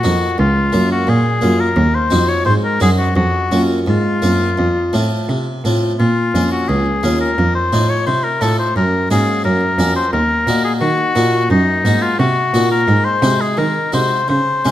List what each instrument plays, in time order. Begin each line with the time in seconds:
Already playing: oboe F#4
0.03 harpsichord F2 A#3 D#4 F#4, cello F2
0.38 harpsichord C#2, cello C#2, oboe F4
0.73 harpsichord F#2 A#3 F4, cello F#2
0.92 oboe F#4
1.07 harpsichord A#2, cello A#2, oboe G#4
1.41 harpsichord F#2 A#3 F4, cello F#2
1.60 oboe A#4
1.76 harpsichord D#2, cello D#2
1.95 oboe C5
2.10 harpsichord F2 C4 D#4 F#4, cello F2
2.28 oboe C#5
2.45 harpsichord G#2, cello G#2, oboe C5
2.64 oboe A#4
2.80 harpsichord F#2 C4 D#4 F#4, cello F#2, oboe G#4
2.99 oboe F#4
3.16 harpsichord F2, cello F2, oboe F#4
3.52 cello F#2, harpsichord F#2 A#3 C4 F4
3.86 harpsichord G#2, cello G#2, oboe F4
4.22 harpsichord F#2 A#3 C4 F4, cello F#2
4.58 harpsichord F2, cello F2
4.93 harpsichord A2 A3 C4 F4, cello A2
5.29 cello C3, harpsichord C3
5.64 cello A2, harpsichord A2 A3 C4 F4
5.99 cello A#2, harpsichord A#2, oboe F4
6.35 cello F2, harpsichord F2 A#3 C#4 F4
6.51 oboe F#4
6.68 cello C#2, harpsichord C#2, oboe G#4
7.03 harpsichord D#2 A#3 C#4 F4, cello D#2
7.20 oboe A#4
7.38 harpsichord F2, cello F2
7.55 oboe C5
7.73 harpsichord A2 A3 D#4 F4, cello A2
7.89 oboe C#5
8.06 harpsichord C3, cello C3, oboe C5
8.24 oboe A#4
8.41 harpsichord A2 A3 D#4 F4, cello A2, oboe A4
8.59 oboe C5
8.76 cello F#2, harpsichord F#2, oboe A#4
9.11 cello G#2, harpsichord G#2 A#3 C#4 F#4, oboe G#4
9.44 harpsichord F#2, cello F#2, oboe A#4
9.78 cello F2, harpsichord F2 A#3 C#4 F#4
9.96 oboe C5
10.13 cello D#2, harpsichord D#2, oboe A#4
10.47 cello A#2, harpsichord A#2 A#3 D#4 F#4
10.64 oboe G#4
10.81 harpsichord D#3, cello D#3, oboe F#4
11.15 harpsichord A#2 A#3 D#4 F#4, cello A#2
11.50 cello F#2, harpsichord F#2, oboe D#4
11.84 cello G#2, harpsichord G#2 A#3 D#4 F#4
12.02 oboe F4
12.19 cello C3, harpsichord C3, oboe F#4
12.53 cello A#2, harpsichord A#2 A#3 D#4 F#4
12.71 oboe A#4
12.88 harpsichord G#2, cello G#2
13.05 oboe C5
13.22 cello C3, harpsichord C3 G#3 D#4 F#4
13.41 oboe G#4
13.57 harpsichord D#3, cello D#3, oboe A#4
13.92 harpsichord C3 G#3 D#4 F#4, cello C3, oboe C5
14.28 harpsichord C#3, cello C#3, oboe C5
14.65 harpsichord C3 G#3 C#4 F4, cello C3